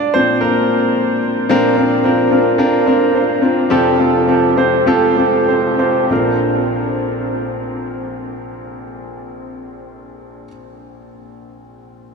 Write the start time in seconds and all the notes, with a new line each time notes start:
Already playing: D4 D5
0.14 A#2 F3 C4 D4 C5
0.41 A#3 A#4
1.49 A#2 F3 C4 D4 F4 A#4
1.77 C4 D4 F4 A#4
2.04 C4 D4 F4 A#4
2.31 C4 D4 F4 A#4
2.58 C4 D4 F4 A#4
2.86 C4 D4 F4 A#4
3.14 C4 D4 F4 C5
3.42 C4 D4 F4 A#4
3.70 F2 C3 C4 F4 G4 A4
3.99 C4 F4 G4 A4
4.28 C4 F4 G4 A4
4.57 C4 F4 G4 C5
4.86 C4 F4 G4 A4
5.17 C4 F4 G4 A4
5.47 C4 F4 G4 C5
5.78 C4 F4 G4 C5
6.08 A#1 C4 D4 F4
6.13 A#4